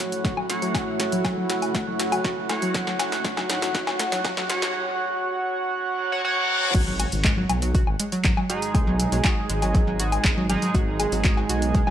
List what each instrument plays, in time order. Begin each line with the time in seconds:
Already playing: ambient pad A3 E4 F#4, analog polysynth F#4 C#5 F#5, riser
0.00 synth pluck F#4
0.12 closed hi-hat
0.25 detuned saw bass F#1, synth pluck A3, kick, snare, closed hi-hat
0.37 synth pluck F#3, low woodblock
0.50 synth pluck F#3, analog polysynth F#4 C#5 F#5, snare, closed hi-hat
0.62 synth pluck F#3, closed hi-hat
0.74 detuned saw bass A1, synth pluck F#4, kick, snare, closed hi-hat, low woodblock
1.00 synth pluck A3, snare, closed hi-hat
1.12 detuned saw bass A1, synth pluck F#3, closed hi-hat
1.25 synth pluck F#3, kick, snare, closed hi-hat, low woodblock
1.37 synth pluck F#3
1.50 detuned saw bass F#1, synth pluck F#4, snare, closed hi-hat
1.62 closed hi-hat, low woodblock
1.75 synth pluck A3, kick, snare, closed hi-hat
1.87 detuned saw bass F#1, synth pluck F#3
2.00 synth pluck F#3, snare, closed hi-hat
2.12 synth pluck F#3, closed hi-hat, low woodblock
2.24 detuned saw bass F#1, synth pluck F#4, kick, snare, closed hi-hat
2.49 synth pluck A3, analog polysynth F#4 C#5 F#5, snare, closed hi-hat, low woodblock
2.62 synth pluck F#3, closed hi-hat
2.74 detuned saw bass F#1, synth pluck F#3, ambient pad D#4, kick, snare, closed hi-hat
2.87 synth pluck F#3, snare
2.99 synth pluck F#4, snare, closed hi-hat, low woodblock
3.12 detuned saw bass F#1, snare, closed hi-hat
3.25 synth pluck A3, kick, snare, closed hi-hat
3.37 synth pluck F#3, snare, low woodblock
3.50 detuned saw bass A1, synth pluck F#3, snare, closed hi-hat
3.62 synth pluck F#3, snare, closed hi-hat
3.75 synth pluck F#4, kick, snare, closed hi-hat
3.87 detuned saw bass F#1, snare, low woodblock
3.99 synth pluck A3, snare, closed hi-hat
4.12 synth pluck F#3, snare, closed hi-hat
4.25 detuned saw bass F#1, synth pluck F#3, kick, snare, closed hi-hat, low woodblock
4.37 synth pluck F#3, snare
4.50 analog polysynth F#4 C#5 F#5, synth pluck F#4, snare, closed hi-hat
4.62 snare, closed hi-hat
5.75 reverse cymbal
6.12 analog polysynth F#4 C#5 F#5
6.25 analog polysynth F#4 C#5 F#5
6.75 detuned saw bass G#1, synth pluck F#3, kick, closed hi-hat, crash, impact
6.87 synth pluck F#3
7.00 synth pluck F#4, closed hi-hat, low woodblock
7.12 detuned saw bass G#1, closed hi-hat
7.24 synth pluck G#3, kick, clap, closed hi-hat
7.37 synth pluck F#3
7.50 detuned saw bass B1, synth pluck F#3, closed hi-hat, low woodblock
7.62 synth pluck F#3, closed hi-hat
7.75 synth pluck F#4, kick, closed hi-hat
7.87 detuned saw bass G#1, low woodblock
8.00 synth pluck G#3, closed hi-hat
8.12 synth pluck F#3, closed hi-hat
8.25 detuned saw bass G#1, synth pluck F#3, kick, clap, closed hi-hat
8.37 synth pluck F#3, low woodblock
8.50 analog polysynth G#3 D#4 G#4, synth pluck F#4, closed hi-hat
8.62 closed hi-hat
8.75 detuned saw bass B1, synth pluck G#3, kick, closed hi-hat, low woodblock
8.87 synth pluck F#3
9.00 synth pluck F#3, closed hi-hat
9.12 detuned saw bass B1, synth pluck F#3, closed hi-hat
9.25 synth pluck F#4, kick, clap, closed hi-hat, low woodblock
9.49 detuned saw bass G#1, synth pluck G#3, closed hi-hat
9.62 synth pluck F#3, closed hi-hat, low woodblock
9.75 synth pluck F#3, kick, closed hi-hat
9.87 detuned saw bass G#1, synth pluck F#3
10.00 synth pluck F#4, closed hi-hat
10.12 closed hi-hat, low woodblock
10.25 detuned saw bass G#1, synth pluck G#3, kick, clap, closed hi-hat
10.37 synth pluck F#3
10.50 synth pluck F#3, analog polysynth G#3 D#4 G#4, closed hi-hat, low woodblock
10.62 synth pluck F#3, closed hi-hat
10.75 detuned saw bass G#1, synth pluck F#4, kick, closed hi-hat
11.00 synth pluck G#3, closed hi-hat, low woodblock
11.12 detuned saw bass G#1, synth pluck F#3, closed hi-hat
11.25 synth pluck F#3, kick, clap, closed hi-hat
11.37 synth pluck F#3, low woodblock
11.49 detuned saw bass B1, synth pluck F#4, closed hi-hat
11.62 closed hi-hat
11.75 synth pluck G#3, kick, closed hi-hat
11.87 detuned saw bass G#1, synth pluck F#3, low woodblock